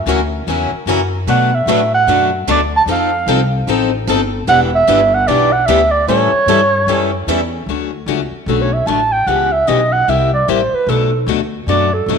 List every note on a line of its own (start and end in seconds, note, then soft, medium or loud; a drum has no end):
0.06 0.46 D2 medium
0.06 0.19 C#3 medium
0.06 0.19 E3 medium
0.06 0.20 F#3 medium
0.06 0.19 A#3 medium
0.06 0.20 C#4 medium
0.06 0.20 E4 medium
0.06 0.20 F#4 medium
0.06 0.20 A#4 medium
0.47 0.71 E2 medium
0.47 0.69 C#3 medium
0.47 0.69 E3 medium
0.47 0.70 F#3 medium
0.47 0.69 A#3 medium
0.47 0.69 C#4 medium
0.47 0.70 E4 medium
0.47 0.70 F#4 medium
0.47 0.71 A#4 medium
0.72 muted upright bass stroke soft
0.86 1.26 F#2 medium
0.86 0.99 C#3 medium
0.86 0.99 E3 medium
0.86 1.00 F#3 medium
0.86 0.99 A#3 medium
0.86 1.00 C#4 medium
0.86 1.00 E4 medium
0.86 1.00 F#4 medium
0.86 1.00 A#4 medium
1.27 1.65 B2 medium
1.27 1.50 B2 medium
1.27 1.50 F#3 medium
1.27 1.50 A3 medium
1.27 1.50 D4 medium
1.27 1.50 F#4 medium
1.27 1.50 B4 medium
1.27 1.56 F#5 medium
1.55 1.94 E5 medium
1.66 2.06 A2 medium
1.66 1.79 B2 medium
1.66 1.80 F#3 medium
1.66 1.79 A3 medium
1.66 1.80 D4 medium
1.66 1.80 F#4 medium
1.66 1.80 B4 medium
1.95 2.31 F#5 medium
2.07 2.47 F#2 medium
2.07 2.29 B2 medium
2.07 2.30 F#3 medium
2.07 2.30 A3 medium
2.07 2.30 D4 medium
2.07 2.30 F#4 medium
2.07 2.30 B4 medium
2.47 2.85 D2 medium
2.47 2.60 B2 medium
2.47 2.60 F#3 medium
2.47 2.60 A3 loud
2.47 2.60 D4 medium
2.47 2.60 F#4 medium
2.47 2.60 B4 medium
2.47 2.62 D5 medium
2.77 2.83 A5 loud
2.86 3.26 F2 medium
2.86 3.09 F3 medium
2.86 3.09 C4 medium
2.86 3.10 D#4 medium
2.86 3.10 A4 medium
2.92 3.51 F5 medium
3.26 3.66 C2 medium
3.26 3.39 F3 medium
3.26 3.40 C4 medium
3.26 3.40 D#4 medium
3.26 3.40 A4 medium
3.67 4.06 A1 medium
3.67 3.90 F3 medium
3.67 3.90 C4 medium
3.67 3.90 D#4 medium
3.67 3.90 A4 medium
4.07 4.47 G1 medium
4.07 4.20 F3 medium
4.07 4.20 C4 medium
4.07 4.20 D#4 medium
4.07 4.20 A4 loud
4.47 4.87 E1 medium
4.47 4.69 E3 medium
4.47 4.69 G3 medium
4.47 4.69 B3 medium
4.47 4.70 D4 medium
4.47 4.70 E4 medium
4.47 4.70 G4 medium
4.47 4.70 B4 medium
4.47 4.60 F#5 loud
4.75 5.16 E5 loud
4.87 5.27 G1 medium
4.87 4.99 E3 medium
4.87 5.00 G3 medium
4.87 5.00 B3 medium
4.87 5.00 D4 medium
4.87 5.00 E4 medium
4.87 5.00 G4 medium
4.87 5.00 B4 medium
5.14 5.29 F#5 medium
5.27 5.67 B1 medium
5.27 5.49 E3 medium
5.27 5.50 G3 medium
5.27 5.50 B3 medium
5.27 5.50 D4 medium
5.27 5.50 E4 medium
5.27 5.50 G4 medium
5.27 5.50 B4 medium
5.27 5.54 D5 medium
5.52 5.67 F#5 medium
5.66 6.07 D2 medium
5.66 5.79 E3 medium
5.66 5.79 G3 medium
5.66 5.80 B3 medium
5.66 5.80 D4 medium
5.66 5.80 E4 medium
5.66 5.80 G4 medium
5.66 5.80 B4 medium
5.66 5.93 E5 medium
5.91 6.07 D5 medium
6.07 6.31 A2 medium
6.07 6.30 E3 medium
6.07 6.30 G3 medium
6.07 6.30 C#4 medium
6.07 6.30 E4 medium
6.07 6.31 A4 medium
6.07 7.24 C#5 medium
6.32 muted upright bass stroke soft
6.46 6.86 G2 medium
6.46 6.59 E3 medium
6.46 6.60 G3 medium
6.46 6.60 C#4 medium
6.46 6.60 E4 medium
6.46 6.60 A4 medium
6.87 7.26 F#2 medium
6.87 7.10 E3 medium
6.87 7.10 G3 medium
6.87 7.10 C#4 medium
6.87 7.10 E4 medium
6.87 7.10 A4 medium
7.27 7.66 E2 medium
7.27 7.39 E3 medium
7.27 7.40 G3 medium
7.27 7.40 C#4 medium
7.27 7.40 E4 medium
7.27 7.40 A4 loud
7.66 8.06 D2 medium
7.66 7.90 D3 medium
7.66 7.90 F#3 medium
7.66 7.90 A3 medium
7.66 7.90 C#4 medium
7.66 7.90 F#4 medium
8.06 8.31 C#2 medium
8.06 8.19 D3 medium
8.06 8.19 F#3 medium
8.06 8.20 A3 medium
8.06 8.19 C#4 medium
8.06 8.20 F#4 medium
8.31 muted upright bass stroke soft
8.46 8.85 B1 medium
8.46 8.69 D3 medium
8.46 8.70 F#3 medium
8.46 8.70 A3 medium
8.46 8.70 C#4 medium
8.46 8.70 F#4 medium
8.46 8.63 A4 medium
8.62 8.75 C#5 medium
8.74 8.88 E5 medium
8.86 9.26 A1 medium
8.86 8.99 D3 medium
8.86 9.00 F#3 medium
8.86 9.00 A3 medium
8.86 9.00 C#4 medium
8.86 9.00 F#4 medium
8.86 9.14 A5 medium
9.12 9.29 G5 medium
9.27 9.66 C#2 medium
9.27 9.49 C#3 medium
9.27 9.49 E3 medium
9.27 9.50 B3 medium
9.27 9.50 C#4 medium
9.27 9.50 G4 medium
9.27 9.54 F#5 medium
9.52 9.69 E5 medium
9.67 10.07 B1 medium
9.67 9.79 C#3 medium
9.67 9.79 E3 medium
9.67 9.80 B3 medium
9.67 9.80 C#4 medium
9.67 9.80 G4 medium
9.67 9.94 D#5 medium
9.93 10.11 F#5 medium
10.07 10.47 C2 medium
10.07 10.29 C3 medium
10.07 10.30 G3 medium
10.07 10.30 A#3 medium
10.07 10.30 E4 medium
10.07 10.30 G4 medium
10.07 10.33 E5 medium
10.34 10.51 D5 medium
10.48 10.71 A1 medium
10.48 10.60 C3 medium
10.48 10.60 G3 medium
10.48 10.60 A#3 medium
10.48 10.60 E4 medium
10.48 10.60 G4 medium
10.48 10.76 C5 medium
10.73 10.91 B4 medium
10.73 muted upright bass stroke soft
10.87 11.26 B1 medium
10.87 11.10 B2 medium
10.87 11.10 F#3 medium
10.87 11.10 A3 medium
10.87 11.10 D4 medium
10.87 11.10 F#4 medium
10.87 11.29 A4 medium
11.27 11.66 D2 medium
11.27 11.39 B2 medium
11.27 11.40 F#3 medium
11.27 11.40 A3 medium
11.27 11.40 D4 medium
11.27 11.40 F#4 medium
11.67 12.06 F#2 medium
11.67 11.89 B2 medium
11.67 11.90 F#3 medium
11.67 11.90 A3 medium
11.67 11.90 D4 medium
11.67 11.90 F#4 medium
11.67 11.95 D5 medium
11.94 12.18 A4 medium
12.06 12.18 F#2 medium
12.06 12.18 B2 medium
12.06 12.18 F#3 medium
12.06 12.18 A3 medium
12.06 12.18 D4 medium
12.06 12.18 F#4 medium